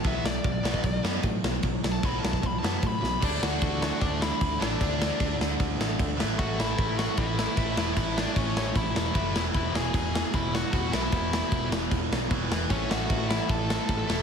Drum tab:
CC |x---x---x---x---|x---x---x---x---|x---x---x---x---|x---x---x---x---|
SD |--o---o---o---o-|--o---o---o---o-|--o---o---o---o-|--o---o---o---o-|
BD |o---o--oo---o---|o---o--oo---o---|o---o---o---o---|o---o---o---o---|

CC |x---x---x---x---|x---x---x---x---|x---x---x---x---|x---x---x---x---|
SD |--o---o---o---o-|--o---o---o---o-|--o---o---o---o-|--o---o---o---o-|
BD |o---o---o---o---|o---o---o---o---|o---o---o---o---|o---o---o---o---|

CC |x---x---x---x---|
SD |--o---o---o---o-|
BD |o---o---o---o---|